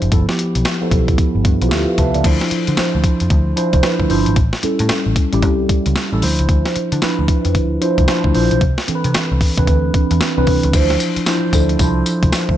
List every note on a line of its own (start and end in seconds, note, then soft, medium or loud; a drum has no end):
0.00 0.10 F#1 medium
0.00 0.12 F3 medium
0.00 0.14 D4 medium
0.00 0.12 E4 medium
0.00 0.13 G4 loud
0.00 0.14 C5 loud
0.00 closed hi-hat soft
0.12 0.25 G1 medium
0.12 0.25 F3 medium
0.12 0.25 B3 medium
0.12 0.25 E4 medium
0.12 0.25 A4 loud
0.12 kick loud
0.12 closed hi-hat medium
0.28 0.68 F3 medium
0.28 0.69 B3 medium
0.28 0.69 E4 medium
0.28 0.69 G4 medium
0.28 snare medium
0.39 closed hi-hat medium
0.55 0.64 B1 medium
0.55 closed hi-hat medium
0.65 snare loud
0.65 closed hi-hat medium
0.81 1.43 F3 medium
0.81 1.43 B3 medium
0.81 1.43 E4 medium
0.81 1.43 A4 medium
0.91 1.13 B1 medium
0.91 kick medium
0.91 closed hi-hat medium
1.08 kick medium
1.08 closed hi-hat soft
1.18 kick medium
1.18 closed hi-hat medium
1.35 1.43 G1 medium
1.45 1.58 G2 medium
1.45 kick medium
1.45 closed hi-hat medium
1.62 1.70 B1 medium
1.62 2.15 F3 medium
1.62 2.15 B3 medium
1.62 2.15 E4 medium
1.62 1.67 F4 medium
1.62 closed hi-hat medium
1.69 1.85 D2 medium
1.69 2.18 G4 medium
1.69 1.87 B4 medium
1.69 1.87 E5 medium
1.69 1.87 F5 medium
1.69 snare loud
1.69 closed hi-hat medium
1.88 1.98 B4 medium
1.88 1.97 F5 medium
1.98 2.11 C2 loud
1.98 2.14 B4 medium
1.98 2.14 E5 medium
1.98 2.23 A5 medium
1.98 kick medium
1.98 closed hi-hat medium
2.14 2.23 C#2 medium
2.14 2.40 A4 medium
2.14 2.40 D5 medium
2.14 closed hi-hat soft
2.24 2.38 D2 loud
2.24 2.70 F3 medium
2.24 2.70 D4 medium
2.24 2.70 E4 medium
2.24 2.70 C5 loud
2.24 kick loud
2.24 closed hi-hat medium
2.24 crash medium
2.41 snare medium
2.51 muted picked electric bass stroke soft
2.51 closed hi-hat medium
2.67 2.76 D3 medium
2.67 closed hi-hat medium
2.77 3.44 F3 medium
2.77 3.44 D4 medium
2.77 3.44 E4 medium
2.77 3.45 C5 loud
2.77 muted picked electric bass stroke soft
2.77 snare loud
2.77 closed hi-hat medium
2.95 3.03 D2 medium
3.04 kick medium
3.04 closed hi-hat medium
3.20 3.29 F2 medium
3.20 closed hi-hat medium
3.30 3.52 D2 loud
3.30 kick loud
3.30 closed hi-hat medium
3.56 3.79 F3 loud
3.56 3.79 D4 medium
3.56 3.80 E4 medium
3.56 3.80 C5 loud
3.56 closed hi-hat medium
3.73 3.82 C2 loud
3.73 kick medium
3.73 closed hi-hat medium
3.83 4.06 F3 medium
3.83 4.06 D4 medium
3.83 4.06 E4 medium
3.83 4.06 B4 medium
3.83 snare loud
3.83 closed hi-hat medium
4.00 4.08 D2 medium
4.00 kick medium
4.10 4.24 G1 medium
4.10 4.36 F3 loud
4.10 4.37 D4 medium
4.10 4.37 E4 medium
4.10 4.37 C5 loud
4.10 open hi-hat medium
4.26 4.35 G#1 medium
4.26 closed hi-hat soft
4.36 4.50 A1 loud
4.36 kick loud
4.36 closed hi-hat medium
4.53 snare medium
4.63 5.17 G3 medium
4.63 5.17 C#4 medium
4.63 5.17 E4 medium
4.63 5.17 A4 medium
4.63 muted picked electric bass stroke soft
4.63 closed hi-hat medium
4.79 4.88 A2 loud
4.79 closed hi-hat medium
4.89 muted picked electric bass stroke soft
4.89 snare loud
4.89 closed hi-hat medium
5.06 5.15 A1 medium
5.16 kick medium
5.16 closed hi-hat medium
5.32 5.43 A1 loud
5.32 5.94 G3 medium
5.32 5.94 C#4 medium
5.32 5.94 E4 medium
5.32 5.95 G4 loud
5.32 closed hi-hat medium
5.42 5.65 C2 loud
5.42 kick medium
5.42 closed hi-hat medium
5.69 kick medium
5.69 closed hi-hat medium
5.86 5.95 C#2 medium
5.86 closed hi-hat medium
5.96 snare loud
5.96 closed hi-hat medium
6.12 6.21 A1 medium
6.12 6.22 G3 medium
6.12 6.22 C#4 medium
6.12 6.22 E4 medium
6.12 6.23 A4 loud
6.22 6.36 D2 loud
6.22 6.89 F3 medium
6.22 6.89 D4 medium
6.22 6.90 E4 medium
6.22 6.90 C5 loud
6.22 open hi-hat medium
6.39 6.48 C#2 medium
6.39 closed hi-hat medium
6.49 6.63 D2 medium
6.49 kick loud
6.49 closed hi-hat medium
6.66 snare medium
6.76 muted picked electric bass stroke soft
6.76 closed hi-hat medium
6.92 7.01 D3 loud
6.92 closed hi-hat medium
7.02 7.69 F3 medium
7.02 7.69 D4 medium
7.02 7.69 E4 medium
7.02 7.69 B4 medium
7.02 muted picked electric bass stroke soft
7.02 snare loud
7.02 closed hi-hat medium
7.19 7.27 D2 medium
7.28 kick medium
7.28 closed hi-hat medium
7.45 7.55 F2 medium
7.45 closed hi-hat soft
7.55 7.77 D2 medium
7.55 kick medium
7.55 closed hi-hat medium
7.81 8.04 F3 loud
7.81 8.04 D4 medium
7.81 8.04 E4 loud
7.81 8.05 C5 loud
7.81 closed hi-hat medium
7.98 8.06 C2 medium
7.98 kick medium
7.98 closed hi-hat soft
8.08 8.31 F3 medium
8.08 8.31 D4 medium
8.08 8.31 E4 medium
8.08 8.31 C5 medium
8.08 snare loud
8.08 closed hi-hat medium
8.24 8.33 D2 medium
8.24 kick medium
8.34 8.49 A#1 loud
8.34 8.61 F3 loud
8.34 8.61 D4 medium
8.34 8.61 E4 loud
8.34 8.62 C5 loud
8.34 open hi-hat medium
8.51 8.60 B1 medium
8.51 closed hi-hat soft
8.61 8.75 C2 loud
8.61 kick loud
8.61 closed hi-hat medium
8.78 snare medium
8.88 9.41 E3 medium
8.88 9.42 C4 medium
8.88 9.42 D4 medium
8.88 8.96 A4 medium
8.88 muted picked electric bass stroke soft
8.88 closed hi-hat medium
8.95 9.45 B4 loud
9.04 9.13 C3 loud
9.04 closed hi-hat medium
9.14 muted picked electric bass stroke soft
9.14 snare loud
9.14 closed hi-hat medium
9.32 9.40 C2 medium
9.41 kick medium
9.41 open hi-hat medium
9.57 9.66 C2 medium
9.57 10.19 E3 medium
9.57 10.19 C4 medium
9.57 10.19 D4 medium
9.57 10.20 B4 medium
9.57 kick medium
9.57 closed hi-hat medium
9.67 9.89 D2 medium
9.67 kick loud
9.67 closed hi-hat medium
9.94 kick loud
9.94 closed hi-hat medium
10.11 10.19 E2 medium
10.11 closed hi-hat medium
10.21 snare loud
10.21 closed hi-hat medium
10.37 10.46 C2 medium
10.37 10.68 E3 loud
10.37 10.68 C4 medium
10.37 10.68 D4 medium
10.37 10.68 B4 loud
10.47 10.61 C2 medium
10.47 kick medium
10.47 open hi-hat medium
10.63 10.72 C#2 medium
10.63 closed hi-hat medium
10.73 10.96 D2 loud
10.73 10.82 E3 medium
10.73 11.19 D4 medium
10.73 11.20 E4 medium
10.73 11.20 C5 loud
10.73 kick loud
10.73 closed hi-hat medium
10.73 crash loud
10.73 tambourine medium
10.81 11.22 F3 loud
10.90 snare medium
11.00 closed hi-hat medium
11.00 tambourine medium
11.16 muted picked electric bass stroke soft
11.16 closed hi-hat medium
11.26 11.49 F3 medium
11.26 11.50 D4 medium
11.26 11.50 E4 medium
11.26 11.50 C5 loud
11.26 snare loud
11.26 closed hi-hat medium
11.26 tambourine medium
11.53 11.75 D2 loud
11.53 11.76 F3 medium
11.53 11.76 D4 medium
11.53 11.76 E4 medium
11.53 11.77 A4 medium
11.53 kick loud
11.53 closed hi-hat medium
11.53 tambourine medium
11.69 closed hi-hat medium
11.79 12.02 C2 medium
11.79 12.57 F3 loud
11.79 12.57 D4 medium
11.79 12.57 E4 medium
11.79 12.57 C5 loud
11.79 kick medium
11.79 closed hi-hat medium
11.79 tambourine medium
12.06 closed hi-hat medium
12.06 tambourine medium
12.23 12.31 C2 medium
12.23 kick medium
12.23 closed hi-hat medium
12.32 muted picked electric bass stroke soft
12.32 snare loud
12.32 closed hi-hat medium
12.32 tambourine medium
12.49 12.57 D2 medium
12.49 kick medium